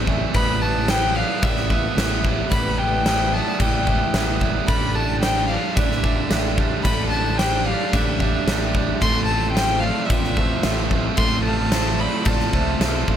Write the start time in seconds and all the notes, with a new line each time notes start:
Already playing: A1 E3 C4 E4
0.07 A2 E3 G3 A3 C4 E4 E5, kick
0.34 A1 A2 G3 B3 E4 B4 B5, kick, crash
0.61 A2 G3 B3 E4 A5
0.88 A2 G3 B3 E4 C5 G5, snare, crash
1.15 A2 G3 B3 E4 D5 F5
1.42 A1 A2 E3 G3 B3 E4 E5, kick, crash
1.56 snare
1.70 A2 G3 B3 E4 E5, kick
1.96 A1 A2 G3 B3 E4, snare, crash
2.24 A2 G3 B3 E4 E5, kick
2.51 A1 A2 G3 B3 E4 B4 B5, kick, crash
2.78 A2 G3 B3 E4 G5
3.05 A2 G3 B3 E4 C5, snare, crash
3.33 A2 G3 B3 E4 D5 A5
3.60 A1 A2 E3 G3 B3 E4 G5, kick, crash
3.86 A2 G3 B3 E4 E5, kick
4.13 A1 A2 G3 B3 E4, snare, crash
4.40 A2 G3 B3 E4 E5, kick
4.68 A1 A2 D3 G3 D4 G4 A4 B5, kick, crash
4.95 A2 D3 G3 D4 G4 A5
5.22 A2 D3 G3 D4 G4 C5 G5, snare, crash
5.48 A2 D3 G3 D4 G4 D5 F5
5.75 A1 A2 D3 G3 D4 G4 E5, kick, crash
5.91 snare
6.03 A2 D3 G3 D4 G4 E5, kick
6.29 A1 A2 D3 G3 D4 G4, snare, crash
6.57 A2 D3 G3 D4 G4 E5, kick
6.83 A1 A2 D3 G3 D4 G4 A4 B5, kick, crash
7.10 A2 D3 G3 D4 G4 A5
7.38 A2 D3 G3 D4 G4 C5 G5, snare, crash
7.66 A2 D3 G3 D4 G4 D5 F5
7.93 A1 A2 D3 G3 D4 G4 E5, kick, crash
8.20 A2 D3 G3 D4 G4 E5, kick
8.47 A1 A2 D3 G3 D4 G4, snare, crash
8.73 A2 D3 G3 D4 G4 E5, kick
9.01 A1 A2 F3 A3 C4 F4 A4 C6, kick, crash
9.26 A2 F3 A3 A5
9.30 C4 F4
9.52 A2 F3 C5 G5
9.56 A3 C4 E4 F4, snare, crash
9.80 A2 F3 A3 D5 F5
9.84 C4 F4
10.06 A2 F3 E5
10.10 A1 A3 C4 F4, kick, crash
10.24 snare
10.36 A2 F3 A3 C4 F4 E5, kick
10.63 A1 A2 F3 A3 C4 E4 F4, snare, crash
10.90 A2 F3 A3 C4 F4 E5, kick
11.17 A1 A2 F3 A3 C4 F4 A4 C6, kick, crash
11.44 A2 F3 A3 C4 F4 A5
11.71 A2 F3 A3 C4 E4 F4 C5, snare, crash
11.98 A2 F3 A3 C4 F4 D5 B5
12.25 A1 A2 F3 A3 C4 F4 A5, kick, crash
12.40 snare
12.53 C2 A2 F3 A3 C4 F4 E5, kick
12.80 B1 A2 F3 A3 C4 E4 F4, snare, crash
13.07 A1 A2 F3 A3 C4 F4 E5, kick